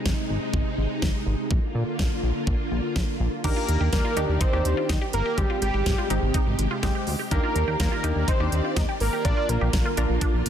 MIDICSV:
0, 0, Header, 1, 7, 480
1, 0, Start_track
1, 0, Tempo, 483871
1, 1495, Time_signature, 4, 2, 24, 8
1, 10408, End_track
2, 0, Start_track
2, 0, Title_t, "Analog synth lead"
2, 0, Program_c, 0, 81
2, 3415, Note_on_c, 0, 70, 104
2, 3861, Note_off_c, 0, 70, 0
2, 3892, Note_on_c, 0, 70, 98
2, 4371, Note_on_c, 0, 72, 102
2, 4386, Note_off_c, 0, 70, 0
2, 4853, Note_off_c, 0, 72, 0
2, 5094, Note_on_c, 0, 70, 109
2, 5334, Note_on_c, 0, 67, 105
2, 5349, Note_off_c, 0, 70, 0
2, 5569, Note_off_c, 0, 67, 0
2, 5575, Note_on_c, 0, 67, 87
2, 6021, Note_off_c, 0, 67, 0
2, 7255, Note_on_c, 0, 70, 104
2, 7701, Note_off_c, 0, 70, 0
2, 7737, Note_on_c, 0, 70, 99
2, 8217, Note_on_c, 0, 72, 106
2, 8232, Note_off_c, 0, 70, 0
2, 8696, Note_off_c, 0, 72, 0
2, 8936, Note_on_c, 0, 70, 99
2, 9176, Note_on_c, 0, 74, 117
2, 9191, Note_off_c, 0, 70, 0
2, 9415, Note_on_c, 0, 70, 95
2, 9430, Note_off_c, 0, 74, 0
2, 9895, Note_off_c, 0, 70, 0
2, 10408, End_track
3, 0, Start_track
3, 0, Title_t, "Synth arpeggio sound"
3, 0, Program_c, 1, 84
3, 3535, Note_on_c, 1, 65, 78
3, 3719, Note_off_c, 1, 65, 0
3, 3775, Note_on_c, 1, 67, 74
3, 3959, Note_off_c, 1, 67, 0
3, 4015, Note_on_c, 1, 65, 78
3, 4107, Note_off_c, 1, 65, 0
3, 4134, Note_on_c, 1, 63, 78
3, 4318, Note_off_c, 1, 63, 0
3, 4374, Note_on_c, 1, 63, 90
3, 4558, Note_off_c, 1, 63, 0
3, 4734, Note_on_c, 1, 65, 74
3, 4826, Note_off_c, 1, 65, 0
3, 4855, Note_on_c, 1, 63, 83
3, 4947, Note_off_c, 1, 63, 0
3, 4975, Note_on_c, 1, 67, 74
3, 5159, Note_off_c, 1, 67, 0
3, 5214, Note_on_c, 1, 67, 76
3, 5307, Note_off_c, 1, 67, 0
3, 5455, Note_on_c, 1, 65, 76
3, 5639, Note_off_c, 1, 65, 0
3, 5695, Note_on_c, 1, 67, 74
3, 5879, Note_off_c, 1, 67, 0
3, 5934, Note_on_c, 1, 65, 74
3, 6027, Note_off_c, 1, 65, 0
3, 6054, Note_on_c, 1, 63, 78
3, 6239, Note_off_c, 1, 63, 0
3, 6294, Note_on_c, 1, 63, 88
3, 6478, Note_off_c, 1, 63, 0
3, 6655, Note_on_c, 1, 65, 74
3, 6747, Note_off_c, 1, 65, 0
3, 6775, Note_on_c, 1, 63, 83
3, 6867, Note_off_c, 1, 63, 0
3, 6896, Note_on_c, 1, 67, 76
3, 7079, Note_off_c, 1, 67, 0
3, 7136, Note_on_c, 1, 67, 78
3, 7227, Note_off_c, 1, 67, 0
3, 7375, Note_on_c, 1, 65, 74
3, 7559, Note_off_c, 1, 65, 0
3, 7615, Note_on_c, 1, 67, 75
3, 7799, Note_off_c, 1, 67, 0
3, 7855, Note_on_c, 1, 65, 75
3, 7947, Note_off_c, 1, 65, 0
3, 7975, Note_on_c, 1, 63, 79
3, 8159, Note_off_c, 1, 63, 0
3, 8215, Note_on_c, 1, 63, 95
3, 8399, Note_off_c, 1, 63, 0
3, 8576, Note_on_c, 1, 65, 74
3, 8668, Note_off_c, 1, 65, 0
3, 8696, Note_on_c, 1, 63, 84
3, 8788, Note_off_c, 1, 63, 0
3, 8816, Note_on_c, 1, 67, 76
3, 9000, Note_off_c, 1, 67, 0
3, 9056, Note_on_c, 1, 67, 80
3, 9148, Note_off_c, 1, 67, 0
3, 9296, Note_on_c, 1, 65, 78
3, 9480, Note_off_c, 1, 65, 0
3, 9536, Note_on_c, 1, 67, 77
3, 9720, Note_off_c, 1, 67, 0
3, 9775, Note_on_c, 1, 65, 74
3, 9867, Note_off_c, 1, 65, 0
3, 9896, Note_on_c, 1, 62, 79
3, 10080, Note_off_c, 1, 62, 0
3, 10135, Note_on_c, 1, 62, 91
3, 10319, Note_off_c, 1, 62, 0
3, 10408, End_track
4, 0, Start_track
4, 0, Title_t, "Analog polysynth"
4, 0, Program_c, 2, 90
4, 3415, Note_on_c, 2, 62, 72
4, 3415, Note_on_c, 2, 63, 68
4, 3415, Note_on_c, 2, 67, 80
4, 3842, Note_off_c, 2, 62, 0
4, 3843, Note_off_c, 2, 63, 0
4, 3843, Note_off_c, 2, 67, 0
4, 4135, Note_on_c, 2, 62, 76
4, 4135, Note_on_c, 2, 67, 83
4, 4136, Note_on_c, 2, 63, 71
4, 4349, Note_off_c, 2, 62, 0
4, 4349, Note_off_c, 2, 63, 0
4, 4349, Note_off_c, 2, 67, 0
4, 4495, Note_on_c, 2, 62, 74
4, 4495, Note_on_c, 2, 63, 70
4, 4495, Note_on_c, 2, 67, 86
4, 4994, Note_off_c, 2, 62, 0
4, 4994, Note_off_c, 2, 63, 0
4, 4994, Note_off_c, 2, 67, 0
4, 5334, Note_on_c, 2, 56, 75
4, 5334, Note_on_c, 2, 60, 69
4, 5334, Note_on_c, 2, 67, 81
4, 5762, Note_off_c, 2, 56, 0
4, 5762, Note_off_c, 2, 60, 0
4, 5762, Note_off_c, 2, 67, 0
4, 6053, Note_on_c, 2, 56, 77
4, 6053, Note_on_c, 2, 60, 70
4, 6053, Note_on_c, 2, 67, 85
4, 6482, Note_off_c, 2, 56, 0
4, 6482, Note_off_c, 2, 60, 0
4, 6482, Note_off_c, 2, 67, 0
4, 6773, Note_on_c, 2, 67, 100
4, 6774, Note_on_c, 2, 56, 94
4, 6774, Note_on_c, 2, 60, 85
4, 7059, Note_off_c, 2, 56, 0
4, 7059, Note_off_c, 2, 60, 0
4, 7059, Note_off_c, 2, 67, 0
4, 7254, Note_on_c, 2, 62, 74
4, 7254, Note_on_c, 2, 63, 67
4, 7254, Note_on_c, 2, 67, 82
4, 7682, Note_off_c, 2, 62, 0
4, 7682, Note_off_c, 2, 63, 0
4, 7682, Note_off_c, 2, 67, 0
4, 7974, Note_on_c, 2, 62, 77
4, 7974, Note_on_c, 2, 63, 72
4, 7974, Note_on_c, 2, 67, 84
4, 8188, Note_off_c, 2, 62, 0
4, 8188, Note_off_c, 2, 63, 0
4, 8189, Note_off_c, 2, 67, 0
4, 8335, Note_on_c, 2, 62, 76
4, 8335, Note_on_c, 2, 63, 69
4, 8335, Note_on_c, 2, 67, 82
4, 8834, Note_off_c, 2, 62, 0
4, 8834, Note_off_c, 2, 63, 0
4, 8834, Note_off_c, 2, 67, 0
4, 9174, Note_on_c, 2, 62, 73
4, 9174, Note_on_c, 2, 65, 68
4, 9174, Note_on_c, 2, 70, 80
4, 9602, Note_off_c, 2, 62, 0
4, 9602, Note_off_c, 2, 65, 0
4, 9602, Note_off_c, 2, 70, 0
4, 9894, Note_on_c, 2, 62, 78
4, 9894, Note_on_c, 2, 70, 87
4, 9895, Note_on_c, 2, 65, 71
4, 10322, Note_off_c, 2, 62, 0
4, 10322, Note_off_c, 2, 65, 0
4, 10322, Note_off_c, 2, 70, 0
4, 10408, End_track
5, 0, Start_track
5, 0, Title_t, "String machine"
5, 0, Program_c, 3, 50
5, 0, Note_on_c, 3, 48, 77
5, 0, Note_on_c, 3, 56, 72
5, 0, Note_on_c, 3, 63, 87
5, 1475, Note_off_c, 3, 48, 0
5, 1475, Note_off_c, 3, 63, 0
5, 1476, Note_off_c, 3, 56, 0
5, 1492, Note_on_c, 3, 58, 71
5, 1493, Note_on_c, 3, 50, 77
5, 1493, Note_on_c, 3, 65, 86
5, 3395, Note_off_c, 3, 50, 0
5, 3395, Note_off_c, 3, 58, 0
5, 3395, Note_off_c, 3, 65, 0
5, 3414, Note_on_c, 3, 51, 77
5, 3414, Note_on_c, 3, 67, 85
5, 3414, Note_on_c, 3, 74, 72
5, 5315, Note_off_c, 3, 51, 0
5, 5315, Note_off_c, 3, 74, 0
5, 5334, Note_on_c, 3, 48, 78
5, 5334, Note_on_c, 3, 56, 70
5, 7235, Note_off_c, 3, 48, 0
5, 7235, Note_off_c, 3, 56, 0
5, 7257, Note_on_c, 3, 51, 80
5, 7257, Note_on_c, 3, 74, 72
5, 9135, Note_off_c, 3, 67, 0
5, 9157, Note_off_c, 3, 51, 0
5, 9157, Note_off_c, 3, 74, 0
5, 9174, Note_on_c, 3, 65, 88
5, 9175, Note_on_c, 3, 58, 74
5, 9176, Note_on_c, 3, 50, 76
5, 10408, Note_off_c, 3, 50, 0
5, 10408, Note_off_c, 3, 58, 0
5, 10408, Note_off_c, 3, 65, 0
5, 10408, End_track
6, 0, Start_track
6, 0, Title_t, "Analog synth bass"
6, 0, Program_c, 4, 38
6, 56, Note_on_c, 4, 32, 103
6, 143, Note_off_c, 4, 32, 0
6, 294, Note_on_c, 4, 32, 96
6, 382, Note_off_c, 4, 32, 0
6, 531, Note_on_c, 4, 32, 106
6, 620, Note_off_c, 4, 32, 0
6, 774, Note_on_c, 4, 32, 96
6, 862, Note_off_c, 4, 32, 0
6, 1015, Note_on_c, 4, 32, 106
6, 1102, Note_off_c, 4, 32, 0
6, 1254, Note_on_c, 4, 32, 100
6, 1341, Note_off_c, 4, 32, 0
6, 1494, Note_on_c, 4, 34, 108
6, 1581, Note_off_c, 4, 34, 0
6, 1734, Note_on_c, 4, 46, 96
6, 1822, Note_off_c, 4, 46, 0
6, 1976, Note_on_c, 4, 34, 96
6, 2063, Note_off_c, 4, 34, 0
6, 2214, Note_on_c, 4, 34, 98
6, 2302, Note_off_c, 4, 34, 0
6, 2452, Note_on_c, 4, 34, 105
6, 2540, Note_off_c, 4, 34, 0
6, 2694, Note_on_c, 4, 34, 92
6, 2782, Note_off_c, 4, 34, 0
6, 2936, Note_on_c, 4, 34, 104
6, 3023, Note_off_c, 4, 34, 0
6, 3175, Note_on_c, 4, 34, 105
6, 3262, Note_off_c, 4, 34, 0
6, 3415, Note_on_c, 4, 39, 109
6, 3502, Note_off_c, 4, 39, 0
6, 3655, Note_on_c, 4, 39, 94
6, 3742, Note_off_c, 4, 39, 0
6, 3775, Note_on_c, 4, 39, 93
6, 3862, Note_off_c, 4, 39, 0
6, 3896, Note_on_c, 4, 39, 100
6, 3983, Note_off_c, 4, 39, 0
6, 4134, Note_on_c, 4, 39, 105
6, 4221, Note_off_c, 4, 39, 0
6, 4255, Note_on_c, 4, 39, 94
6, 4342, Note_off_c, 4, 39, 0
6, 4494, Note_on_c, 4, 39, 94
6, 4582, Note_off_c, 4, 39, 0
6, 4615, Note_on_c, 4, 39, 104
6, 4702, Note_off_c, 4, 39, 0
6, 4855, Note_on_c, 4, 39, 96
6, 4942, Note_off_c, 4, 39, 0
6, 5095, Note_on_c, 4, 31, 95
6, 5182, Note_off_c, 4, 31, 0
6, 5334, Note_on_c, 4, 32, 103
6, 5421, Note_off_c, 4, 32, 0
6, 5575, Note_on_c, 4, 32, 92
6, 5662, Note_off_c, 4, 32, 0
6, 5695, Note_on_c, 4, 32, 102
6, 5782, Note_off_c, 4, 32, 0
6, 5816, Note_on_c, 4, 32, 100
6, 5903, Note_off_c, 4, 32, 0
6, 6055, Note_on_c, 4, 32, 96
6, 6142, Note_off_c, 4, 32, 0
6, 6174, Note_on_c, 4, 32, 95
6, 6262, Note_off_c, 4, 32, 0
6, 6415, Note_on_c, 4, 32, 92
6, 6502, Note_off_c, 4, 32, 0
6, 6535, Note_on_c, 4, 32, 102
6, 6622, Note_off_c, 4, 32, 0
6, 6776, Note_on_c, 4, 32, 105
6, 6863, Note_off_c, 4, 32, 0
6, 7015, Note_on_c, 4, 38, 92
6, 7102, Note_off_c, 4, 38, 0
6, 7255, Note_on_c, 4, 39, 118
6, 7342, Note_off_c, 4, 39, 0
6, 7495, Note_on_c, 4, 39, 96
6, 7582, Note_off_c, 4, 39, 0
6, 7615, Note_on_c, 4, 39, 99
6, 7702, Note_off_c, 4, 39, 0
6, 7737, Note_on_c, 4, 39, 99
6, 7823, Note_off_c, 4, 39, 0
6, 7974, Note_on_c, 4, 39, 105
6, 8062, Note_off_c, 4, 39, 0
6, 8094, Note_on_c, 4, 39, 94
6, 8182, Note_off_c, 4, 39, 0
6, 8335, Note_on_c, 4, 39, 95
6, 8422, Note_off_c, 4, 39, 0
6, 8455, Note_on_c, 4, 39, 96
6, 8542, Note_off_c, 4, 39, 0
6, 8697, Note_on_c, 4, 39, 98
6, 8783, Note_off_c, 4, 39, 0
6, 8934, Note_on_c, 4, 32, 93
6, 9021, Note_off_c, 4, 32, 0
6, 9175, Note_on_c, 4, 34, 112
6, 9262, Note_off_c, 4, 34, 0
6, 9414, Note_on_c, 4, 34, 99
6, 9502, Note_off_c, 4, 34, 0
6, 9535, Note_on_c, 4, 34, 102
6, 9622, Note_off_c, 4, 34, 0
6, 9656, Note_on_c, 4, 34, 102
6, 9743, Note_off_c, 4, 34, 0
6, 9895, Note_on_c, 4, 34, 99
6, 9982, Note_off_c, 4, 34, 0
6, 10014, Note_on_c, 4, 34, 99
6, 10102, Note_off_c, 4, 34, 0
6, 10255, Note_on_c, 4, 34, 105
6, 10342, Note_off_c, 4, 34, 0
6, 10374, Note_on_c, 4, 34, 98
6, 10408, Note_off_c, 4, 34, 0
6, 10408, End_track
7, 0, Start_track
7, 0, Title_t, "Drums"
7, 56, Note_on_c, 9, 36, 108
7, 56, Note_on_c, 9, 38, 108
7, 155, Note_off_c, 9, 36, 0
7, 155, Note_off_c, 9, 38, 0
7, 531, Note_on_c, 9, 36, 116
7, 630, Note_off_c, 9, 36, 0
7, 1014, Note_on_c, 9, 38, 95
7, 1016, Note_on_c, 9, 36, 107
7, 1114, Note_off_c, 9, 38, 0
7, 1115, Note_off_c, 9, 36, 0
7, 1494, Note_on_c, 9, 36, 112
7, 1593, Note_off_c, 9, 36, 0
7, 1976, Note_on_c, 9, 36, 112
7, 1977, Note_on_c, 9, 38, 109
7, 2075, Note_off_c, 9, 36, 0
7, 2076, Note_off_c, 9, 38, 0
7, 2452, Note_on_c, 9, 36, 114
7, 2551, Note_off_c, 9, 36, 0
7, 2934, Note_on_c, 9, 38, 95
7, 2936, Note_on_c, 9, 36, 109
7, 3033, Note_off_c, 9, 38, 0
7, 3035, Note_off_c, 9, 36, 0
7, 3414, Note_on_c, 9, 36, 111
7, 3415, Note_on_c, 9, 42, 66
7, 3415, Note_on_c, 9, 49, 92
7, 3514, Note_off_c, 9, 36, 0
7, 3514, Note_off_c, 9, 42, 0
7, 3514, Note_off_c, 9, 49, 0
7, 3656, Note_on_c, 9, 42, 71
7, 3755, Note_off_c, 9, 42, 0
7, 3894, Note_on_c, 9, 42, 65
7, 3896, Note_on_c, 9, 36, 109
7, 3897, Note_on_c, 9, 38, 107
7, 3994, Note_off_c, 9, 42, 0
7, 3995, Note_off_c, 9, 36, 0
7, 3996, Note_off_c, 9, 38, 0
7, 4133, Note_on_c, 9, 42, 78
7, 4232, Note_off_c, 9, 42, 0
7, 4372, Note_on_c, 9, 36, 117
7, 4373, Note_on_c, 9, 42, 82
7, 4471, Note_off_c, 9, 36, 0
7, 4472, Note_off_c, 9, 42, 0
7, 4614, Note_on_c, 9, 42, 74
7, 4713, Note_off_c, 9, 42, 0
7, 4855, Note_on_c, 9, 38, 95
7, 4856, Note_on_c, 9, 36, 109
7, 4858, Note_on_c, 9, 42, 67
7, 4954, Note_off_c, 9, 38, 0
7, 4955, Note_off_c, 9, 36, 0
7, 4957, Note_off_c, 9, 42, 0
7, 5092, Note_on_c, 9, 42, 69
7, 5191, Note_off_c, 9, 42, 0
7, 5334, Note_on_c, 9, 36, 117
7, 5334, Note_on_c, 9, 42, 67
7, 5433, Note_off_c, 9, 36, 0
7, 5434, Note_off_c, 9, 42, 0
7, 5574, Note_on_c, 9, 42, 72
7, 5673, Note_off_c, 9, 42, 0
7, 5814, Note_on_c, 9, 42, 64
7, 5816, Note_on_c, 9, 36, 111
7, 5816, Note_on_c, 9, 38, 112
7, 5913, Note_off_c, 9, 42, 0
7, 5915, Note_off_c, 9, 36, 0
7, 5916, Note_off_c, 9, 38, 0
7, 6054, Note_on_c, 9, 42, 78
7, 6153, Note_off_c, 9, 42, 0
7, 6292, Note_on_c, 9, 36, 120
7, 6293, Note_on_c, 9, 42, 84
7, 6391, Note_off_c, 9, 36, 0
7, 6392, Note_off_c, 9, 42, 0
7, 6534, Note_on_c, 9, 42, 73
7, 6633, Note_off_c, 9, 42, 0
7, 6775, Note_on_c, 9, 38, 99
7, 6776, Note_on_c, 9, 36, 111
7, 6778, Note_on_c, 9, 42, 69
7, 6874, Note_off_c, 9, 38, 0
7, 6875, Note_off_c, 9, 36, 0
7, 6877, Note_off_c, 9, 42, 0
7, 7012, Note_on_c, 9, 46, 70
7, 7111, Note_off_c, 9, 46, 0
7, 7255, Note_on_c, 9, 36, 115
7, 7256, Note_on_c, 9, 42, 68
7, 7354, Note_off_c, 9, 36, 0
7, 7355, Note_off_c, 9, 42, 0
7, 7495, Note_on_c, 9, 42, 72
7, 7595, Note_off_c, 9, 42, 0
7, 7735, Note_on_c, 9, 42, 64
7, 7737, Note_on_c, 9, 36, 112
7, 7737, Note_on_c, 9, 38, 109
7, 7834, Note_off_c, 9, 42, 0
7, 7836, Note_off_c, 9, 36, 0
7, 7836, Note_off_c, 9, 38, 0
7, 7975, Note_on_c, 9, 42, 76
7, 8074, Note_off_c, 9, 42, 0
7, 8212, Note_on_c, 9, 36, 121
7, 8214, Note_on_c, 9, 42, 85
7, 8312, Note_off_c, 9, 36, 0
7, 8313, Note_off_c, 9, 42, 0
7, 8455, Note_on_c, 9, 42, 73
7, 8554, Note_off_c, 9, 42, 0
7, 8695, Note_on_c, 9, 38, 95
7, 8696, Note_on_c, 9, 36, 115
7, 8698, Note_on_c, 9, 42, 69
7, 8794, Note_off_c, 9, 38, 0
7, 8796, Note_off_c, 9, 36, 0
7, 8797, Note_off_c, 9, 42, 0
7, 8932, Note_on_c, 9, 46, 71
7, 9031, Note_off_c, 9, 46, 0
7, 9175, Note_on_c, 9, 36, 115
7, 9175, Note_on_c, 9, 42, 68
7, 9274, Note_off_c, 9, 36, 0
7, 9274, Note_off_c, 9, 42, 0
7, 9416, Note_on_c, 9, 42, 76
7, 9515, Note_off_c, 9, 42, 0
7, 9655, Note_on_c, 9, 42, 62
7, 9656, Note_on_c, 9, 36, 111
7, 9657, Note_on_c, 9, 38, 114
7, 9754, Note_off_c, 9, 42, 0
7, 9756, Note_off_c, 9, 36, 0
7, 9756, Note_off_c, 9, 38, 0
7, 9893, Note_on_c, 9, 42, 82
7, 9992, Note_off_c, 9, 42, 0
7, 10132, Note_on_c, 9, 36, 120
7, 10134, Note_on_c, 9, 42, 84
7, 10231, Note_off_c, 9, 36, 0
7, 10233, Note_off_c, 9, 42, 0
7, 10374, Note_on_c, 9, 42, 73
7, 10408, Note_off_c, 9, 42, 0
7, 10408, End_track
0, 0, End_of_file